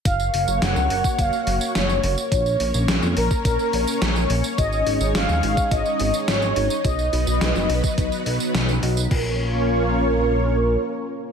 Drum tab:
CC |----------------|----------------|----------------|----------------|
HH |x-o-x-o-x-o-x-o-|x-o-x-o-x-o-x-o-|x-o-x-o-x-o-x-o-|x-o-x-o-x-o-x-o-|
TB |xx-xxx-xxx-xxx-x|xx-xxx-xxx-xxx-x|xx-xxx-xxx-xxx-x|xx-xxx-xxx-xxx-x|
SD |----o-------o---|----o-------o---|----o-------o---|----o-------o---|
BD |o------oo-------|o------oo-------|o------oo-------|o------oo-------|

CC |x---------------|
HH |----------------|
TB |----------------|
SD |----------------|
BD |o---------------|